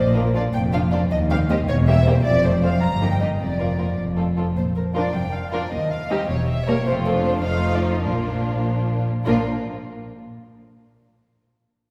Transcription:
0.00 0.44 A#1 medium
0.00 0.45 A#2 medium
0.00 0.14 C5 medium
0.15 0.22 F3 soft
0.15 0.22 A#3 soft
0.15 0.22 D4 soft
0.15 0.22 F4 soft
0.15 0.35 A#4 medium
0.35 0.41 F3 soft
0.35 0.41 A#3 soft
0.35 0.41 D4 soft
0.35 0.41 F4 soft
0.35 0.43 D5 medium
0.54 1.02 F1 medium
0.54 1.02 F2 medium
0.54 0.61 G5 medium
0.73 0.79 F3 soft
0.73 0.79 A#3 soft
0.73 0.79 D4 soft
0.73 0.79 F4 soft
0.73 0.81 F5 medium
0.92 0.98 F3 soft
0.92 0.98 A#3 soft
0.92 0.99 D4 soft
0.92 0.99 F4 soft
0.92 1.00 D5 medium
1.11 1.59 D#2 medium
1.11 1.19 D#5 medium
1.30 1.36 D#3 soft
1.30 1.37 G3 medium
1.30 1.37 C4 soft
1.30 1.37 G4 soft
1.30 1.38 F5 medium
1.50 1.56 D#3 soft
1.50 1.56 G3 medium
1.50 1.56 C4 soft
1.50 1.56 G4 soft
1.50 1.57 D#5 medium
1.68 2.15 E1 medium
1.68 2.16 E2 medium
1.68 1.75 C#5 medium
1.87 1.93 G3 medium
1.87 1.94 A#3 soft
1.87 1.94 G4 soft
1.87 2.06 E5 medium
2.06 2.13 G3 medium
2.06 2.13 A#3 soft
2.06 2.13 G4 medium
2.06 2.25 C5 medium
2.24 2.72 F1 medium
2.24 2.73 F2 medium
2.24 2.43 D5 medium
2.44 2.51 F3 soft
2.44 2.50 A3 soft
2.44 2.51 C4 soft
2.44 2.63 C5 medium
2.44 2.51 C5 soft
2.63 2.69 F3 soft
2.63 2.69 A3 soft
2.63 2.70 C4 soft
2.63 2.70 C5 soft
2.63 2.82 F5 medium
2.82 3.31 G1 medium
2.82 3.31 G2 medium
2.82 3.11 A#5 medium
3.02 3.08 A#3 soft
3.02 3.08 D#4 soft
3.02 3.08 G4 soft
3.11 3.21 G5 medium
3.20 3.27 A#3 soft
3.20 3.28 D#4 soft
3.20 3.27 G4 soft
3.20 3.28 D#5 medium
3.39 3.89 F1 soft
3.39 3.89 F2 soft
3.39 3.97 D5 soft
3.60 3.66 F3 soft
3.60 3.66 A#3 soft
3.60 3.66 F4 soft
3.60 3.66 A#4 soft
3.79 3.85 F3 soft
3.79 3.85 A#3 soft
3.79 3.85 F4 soft
3.79 3.85 A#4 soft
3.99 4.47 F1 soft
3.99 4.47 F2 soft
4.17 4.24 F3 soft
4.17 4.24 C4 soft
4.17 4.24 F4 soft
4.17 4.24 A4 soft
4.38 4.44 F3 soft
4.38 4.44 C4 soft
4.38 4.44 F4 soft
4.38 4.44 A4 soft
4.56 5.03 A#1 medium
4.56 5.03 A#2 soft
4.56 4.64 C5 medium
4.76 4.84 A#4 soft
4.95 5.04 F3 soft
4.95 5.05 D4 soft
4.95 5.04 F4 soft
4.95 5.04 A#4 soft
4.95 5.14 D5 medium
5.14 5.60 F1 soft
5.14 5.60 F2 soft
5.14 5.34 G5 medium
5.34 5.53 F5 medium
5.52 5.62 F3 soft
5.52 5.62 D4 soft
5.52 5.62 F4 soft
5.52 5.62 A#4 soft
5.52 5.72 D5 medium
5.71 6.17 D#2 medium
5.71 6.18 D#2 medium
5.71 5.91 D#5 medium
5.91 6.10 F5 medium
6.10 6.19 G3 soft
6.10 6.19 C4 soft
6.10 6.19 D#4 soft
6.10 6.19 G4 soft
6.10 6.29 D#5 medium
6.29 6.75 E1 medium
6.29 6.75 E2 medium
6.29 6.48 C#5 medium
6.49 6.67 E5 medium
6.67 6.77 G3 medium
6.67 6.77 A#3 soft
6.67 6.77 A#3 medium
6.67 6.77 A#4 medium
6.67 6.87 C#5 medium
6.86 7.41 F1 medium
6.86 7.41 F2 medium
6.86 7.41 F3 soft
6.86 7.41 A3 medium
6.86 7.13 C4 soft
6.86 7.40 F4 medium
6.86 6.94 C5 medium
7.06 7.13 A4 medium
7.15 7.45 D4 soft
7.24 7.44 C5 medium
7.44 8.03 F1 medium
7.44 8.03 F2 soft
7.44 8.03 F3 medium
7.44 8.03 A3 medium
7.44 8.04 D#4 soft
7.44 8.03 F4 soft
7.44 7.73 F5 medium
7.75 7.84 D5 medium
7.83 8.03 C5 soft
8.03 9.06 A#1 soft
8.03 9.06 A#2 soft
8.03 9.04 F3 soft
8.03 9.04 A#3 soft
8.03 9.04 D4 soft
8.03 9.04 F4 soft
8.03 8.63 A#4 soft
9.26 9.49 A#1 soft
9.26 9.49 A#2 medium
9.26 9.49 F3 soft
9.26 9.49 A#3 soft
9.26 9.49 D4 soft
9.26 9.48 F4 soft
9.26 9.49 A#4 medium

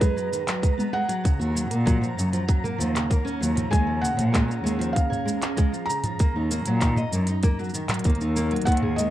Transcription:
0.00 1.25 F#3 loud
0.00 0.15 G#3 medium
0.00 2.24 G#4 medium
0.00 1.25 B4 medium
0.00 0.97 B4 medium
0.00 2.12 D#5 medium
0.00 9.10 A#5 medium
0.00 kick loud
0.00 closed hi-hat soft
0.00 shaker soft
0.16 0.30 F#3 medium
0.16 shaker soft
0.32 0.46 D#3 medium
0.32 shaker medium
0.47 0.61 F#3 medium
0.47 clap medium
0.47 closed hi-hat medium
0.47 shaker soft
0.62 0.77 G#3 medium
0.62 kick loud
0.62 closed hi-hat soft
0.62 shaker soft
0.78 0.92 B3 medium
0.78 mid tom medium
0.78 shaker soft
0.93 1.07 G#3 loud
0.93 3.37 F#5 loud
1.09 1.23 F#3 loud
1.09 closed hi-hat medium
1.09 shaker soft
1.24 1.38 C#3 medium
1.24 kick loud
1.24 closed hi-hat soft
1.24 shaker soft
1.39 1.63 D#2 medium
1.39 1.55 F#4 medium
1.39 shaker soft
1.49 7.19 C#5 medium
1.55 1.69 F#3 medium
1.55 shaker medium
1.71 2.11 A#2 loud
1.71 1.85 A#3 medium
1.71 closed hi-hat medium
1.71 shaker soft
1.75 4.72 A#3 loud
1.86 2.00 F#3 loud
1.86 kick loud
1.86 closed hi-hat soft
1.86 mid tom medium
1.86 shaker soft
1.95 3.73 F#5 medium
2.01 2.16 F3 medium
2.01 shaker soft
2.17 2.29 F#2 medium
2.17 2.31 C#3 medium
2.17 shaker medium
2.33 2.47 F3 medium
2.33 closed hi-hat soft
2.33 shaker soft
2.48 2.62 F#3 medium
2.48 kick loud
2.48 closed hi-hat soft
2.48 shaker soft
2.64 2.78 A#3 medium
2.64 mid tom medium
2.64 shaker soft
2.78 2.91 D#2 loud
2.78 2.94 F3 medium
2.78 shaker medium
2.95 3.09 C#3 medium
2.95 clap medium
2.95 closed hi-hat soft
2.95 shaker soft
3.10 3.24 A#3 medium
3.10 kick loud
3.10 closed hi-hat soft
3.10 shaker soft
3.25 3.40 C#4 loud
3.25 shaker soft
3.41 3.65 D#2 medium
3.41 3.55 F#3 medium
3.41 shaker medium
3.55 3.70 F3 medium
3.55 closed hi-hat medium
3.55 mid tom medium
3.55 shaker soft
3.70 4.13 D#2 medium
3.70 3.85 G#3 loud
3.70 4.04 G#5 medium
3.70 kick loud
3.70 closed hi-hat soft
3.70 shaker soft
3.84 4.01 F3 medium
3.84 7.19 C#4 medium
4.01 4.16 C#3 medium
4.01 4.98 F#5 loud
4.01 shaker medium
4.17 4.59 A#2 loud
4.17 4.32 F3 medium
4.17 closed hi-hat medium
4.17 mid tom medium
4.17 shaker soft
4.31 4.47 G#3 medium
4.31 7.19 G#4 medium
4.31 kick loud
4.31 clap medium
4.31 closed hi-hat soft
4.35 shaker soft
4.48 4.63 C#4 medium
4.48 shaker soft
4.64 4.76 D#2 medium
4.64 4.78 G#3 loud
4.64 shaker medium
4.79 4.94 F3 loud
4.79 closed hi-hat soft
4.79 shaker soft
4.93 5.09 C#3 medium
4.93 5.90 F5 medium
4.93 kick loud
4.93 closed hi-hat soft
4.97 shaker soft
5.10 5.25 C#5 medium
5.10 mid tom medium
5.10 shaker soft
5.25 5.40 G#3 medium
5.25 shaker medium
5.42 5.56 C#4 medium
5.42 clap medium
5.42 closed hi-hat medium
5.42 shaker soft
5.57 5.71 G#3 loud
5.57 kick loud
5.57 closed hi-hat soft
5.57 shaker soft
5.72 5.87 F3 medium
5.72 shaker soft
5.86 6.03 C#3 medium
5.86 8.31 A#5 loud
5.90 shaker medium
6.04 6.18 F3 medium
6.04 closed hi-hat medium
6.04 mid tom medium
6.04 shaker soft
6.19 6.34 A#3 medium
6.19 kick loud
6.19 closed hi-hat soft
6.19 shaker soft
6.34 6.58 D#2 medium
6.34 6.49 D#4 medium
6.40 9.10 D#4 medium
6.51 6.65 A#3 loud
6.51 shaker medium
6.66 7.06 A#2 loud
6.66 6.81 F#3 loud
6.66 closed hi-hat medium
6.66 shaker soft
6.81 6.96 D#3 medium
6.81 kick loud
6.81 clap medium
6.81 closed hi-hat soft
6.81 shaker soft
6.96 7.12 D#5 medium
6.96 mid tom medium
6.96 shaker soft
7.04 9.10 A#4 medium
7.12 7.24 F#2 medium
7.12 7.27 A#3 medium
7.12 shaker medium
7.27 7.42 D#4 medium
7.27 closed hi-hat medium
7.27 shaker soft
7.32 9.10 D#5 medium
7.43 7.57 A#3 loud
7.43 kick loud
7.43 closed hi-hat soft
7.43 shaker soft
7.59 7.73 F#3 medium
7.59 shaker soft
7.64 shaker soft
7.69 shaker soft
7.74 7.88 D#3 medium
7.74 shaker medium
7.89 8.04 F#3 medium
7.89 clap medium
7.89 closed hi-hat medium
7.89 mid tom medium
7.89 shaker soft
7.94 closed hi-hat soft
7.99 closed hi-hat soft
8.04 8.17 D#2 medium
8.04 8.20 A#3 medium
8.04 kick loud
8.04 closed hi-hat soft
8.04 shaker soft
8.10 closed hi-hat soft
8.15 closed hi-hat soft
8.19 8.60 D#2 loud
8.19 8.35 D#4 medium
8.19 shaker soft
8.36 8.50 A#3 loud
8.36 shaker medium
8.51 8.66 F#3 loud
8.51 closed hi-hat soft
8.56 closed hi-hat soft
8.62 8.73 F#5 loud
8.62 closed hi-hat soft
8.66 9.07 D#2 loud
8.66 8.81 D#3 medium
8.66 kick loud
8.66 closed hi-hat soft
8.66 shaker soft
8.72 closed hi-hat soft
8.77 closed hi-hat medium
8.83 8.97 G#4 medium
8.83 mid tom medium
8.96 9.10 G#3 medium
8.96 9.10 B4 medium
8.96 9.10 D#5 medium
8.96 shaker medium

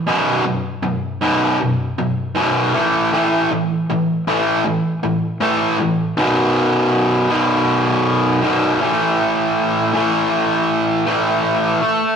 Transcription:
0.07 0.43 B1 medium
0.07 0.44 F#2 medium
0.07 0.44 B2 medium
0.46 0.80 B1 medium
0.46 0.80 F#2 medium
0.83 1.18 B1 medium
0.83 1.18 F#2 medium
1.22 1.58 B1 medium
1.22 1.58 F#2 medium
1.22 1.59 B2 medium
1.61 1.95 B1 medium
1.61 1.95 F#2 medium
1.98 2.33 B1 medium
1.98 2.33 F#2 medium
2.36 2.72 B1 medium
2.36 2.72 F#2 medium
2.36 2.73 B2 loud
2.74 3.10 A2 medium
2.74 3.10 E3 loud
2.74 3.11 A3 medium
3.13 3.49 A2 medium
3.13 3.49 E3 medium
3.13 3.49 A3 medium
3.52 3.86 A2 medium
3.52 3.85 E3 medium
3.90 4.24 A2 medium
3.90 4.24 E3 medium
4.27 4.63 A2 medium
4.27 4.63 E3 medium
4.27 4.63 A3 medium
4.65 4.99 A2 medium
4.65 4.99 E3 medium
5.03 5.37 A2 medium
5.03 5.37 E3 medium
5.40 5.76 A2 medium
5.40 5.77 E3 medium
5.40 5.77 A3 loud
5.79 6.13 A2 medium
5.79 6.13 E3 medium
6.17 7.28 B1 medium
6.17 7.28 F#2 loud
6.17 7.28 B2 loud
7.30 8.40 B1 medium
7.30 8.41 F#2 medium
7.30 8.40 B2 medium
8.41 8.77 B1 medium
8.41 8.78 F#2 medium
8.41 8.79 B2 medium
8.80 9.91 A2 loud
8.80 9.92 E3 loud
8.80 9.95 A3 loud
9.93 11.04 A2 medium
9.93 11.04 E3 medium
9.93 11.06 A3 medium
11.06 11.81 A2 medium
11.06 11.80 E3 medium
11.06 12.16 A3 medium

